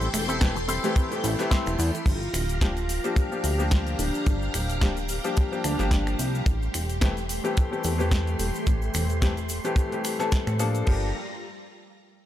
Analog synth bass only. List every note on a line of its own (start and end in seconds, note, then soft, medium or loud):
0.14 0.79 E1 loud
1.24 1.36 A1 loud
1.66 1.76 E1 medium
1.79 1.91 E2 loud
2.06 2.29 G1 loud
2.34 2.99 D1 loud
3.44 3.95 D2 medium
3.99 4.11 D1 medium
4.27 4.49 G1 medium
4.54 5.20 D1 loud
5.65 5.77 D2 medium
5.79 6.15 G1 medium
6.19 6.42 C2 medium
6.46 6.69 A1 loud
6.75 7.40 E1 loud
7.85 8.36 E2 medium
8.39 8.52 E1 medium
8.67 8.89 A1 loud
8.94 9.60 E1 loud
10.47 10.83 A2 medium
10.87 11.13 G1 medium